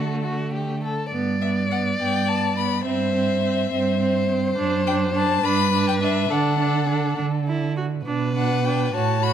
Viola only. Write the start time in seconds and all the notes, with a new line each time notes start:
Already playing: A3
1.12 B3
1.42 B3
1.71 B3
1.99 B3
2.28 B3
2.56 B3
2.85 C4
3.14 C4
3.43 C4
3.71 C4
4.00 C4
4.29 C4
4.58 D4
4.87 D4
5.14 D4
5.44 D4
5.72 D4
6.01 D4
6.30 D4
6.59 D4
6.88 D4
7.17 D4
7.47 E4
7.77 F#4
8.06 D4
8.36 D4
8.65 D4
8.94 F#4
9.23 F#4